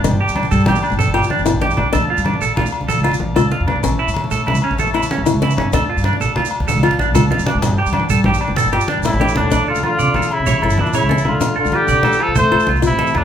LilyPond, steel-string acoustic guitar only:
\new Staff \with { instrumentName = "Steel-string acoustic guitar" } { \time 12/8 \key d \minor \tempo 4. = 127 d'4 r2 r8 f'4 e'8 d'4 | d'4 r2 r8 f'4 f'8 d'4 | cis'4 r2 r8 e'4 e'8 cis'4 | d'4 r2 r8 f'4 f'8 d'4 |
d'4 r2 r8 f'4 e'8 d'4 | d'4 r2 r8 e'4 e'8 cis'4 | d'4 r2 r8 f'4 f'8 r4 | }